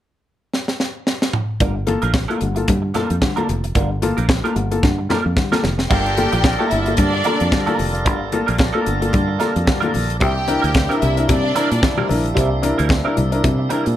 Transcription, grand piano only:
1.61 G2 D3
1.87 A#3 F4 A4
2.02 F4 A4
2.29 A#3 F4 A4
2.42 G2 D3
2.57 A#3 F4 A4
2.69 G2 D3
2.95 A#3 F4 A4
3.11 F4 A4
3.22 G2 D3
3.37 A#3 F4 A4
3.49 F4 A4
3.76 G2 D3
4.02 A#3 F4 A4
4.17 F4 A4
4.43 A#3 F4 A4
4.55 G2 D3
4.71 A#3 F4 A4
4.84 G2 D3
5.09 A#3 F4 A4
5.24 F4 A4
5.36 G2 D3
5.52 A#3 F4 A4
5.64 F4 A4
5.91 G2 D3
6.17 A#3 F4 A4
6.33 F4 A4
6.60 A#3 F4 A4
6.72 G2 D3
6.87 A#3 F4 A4
7.00 G2 D3
7.26 A#3 F4 A4
7.42 F4 A4
7.53 G2 D3
7.68 A#3 F4 A4
7.80 F4 A4
8.07 G2 D3
8.33 A#3 F4 A4
8.48 F4 A4
8.75 A#3 F4 A4
8.86 G2 D3
9.01 A#3 F4 A4
9.14 G2 D3
9.40 A#3 F4 A4
9.56 F4 A4
9.68 G2 D3
9.83 A#3 F4 A4
9.95 F4 A4
10.22 C3 G3
10.48 D4 E4 A#4
10.64 E4 A#4
10.90 D4 E4 A#4
11.02 C3 G3
11.17 D4 E4 A#4
11.28 C3 G3
11.55 D4 E4 A#4
11.71 E4 A#4
11.82 E4 A#4
11.97 C3 G3
12.09 D4 E4 A#4
12.35 C3 G3
12.62 D4 E4 A#4
12.78 E4 A#4
13.04 D4 E4 A#4
13.17 C3 G3
13.32 D4 E4 A#4
13.44 C3 G3
13.70 D4 E4 A#4
13.86 E4 A#4

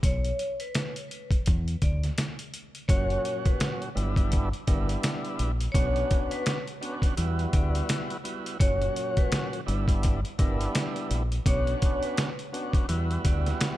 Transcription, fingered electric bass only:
0.03 B1
1.48 E2
1.82 D2
2.89 F#1
3.97 G1
4.68 G1
5.40 A#1
5.75 B1
7.18 E2
7.54 D2
8.61 F#1
9.68 G1
10.39 G1
11.11 A#1
11.46 B1
12.89 E2
13.25 D2

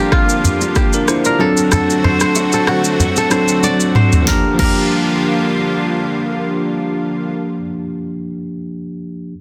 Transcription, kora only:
Already playing: A#4
0.00 G4
0.13 F4
0.76 G4
1.26 A#4
1.40 A4
1.72 A4
2.04 C5
2.22 C5
2.54 A4
2.68 F#4
3.18 A4
3.32 C5
3.64 D5
3.96 C5
4.28 A#4
4.59 A#4

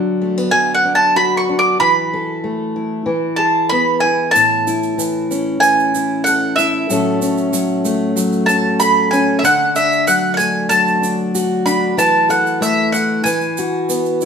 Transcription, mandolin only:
Already playing: F#5
0.51 G#5
0.74 F#5
0.95 A5
1.16 B5
1.37 C#6
1.59 D6
1.80 B5
3.36 A5
3.69 B5
4.00 G#5
4.31 A5
5.60 G#5
6.24 F#5
6.56 E5
8.46 A5
8.80 B5
9.11 G#5
9.39 E5
9.45 F#5
9.76 E5
10.07 F#5
10.34 F#5 G#5
10.69 A5
11.66 B5
11.99 A5
12.30 F#5
12.62 E5
12.92 F#5
13.24 G#5

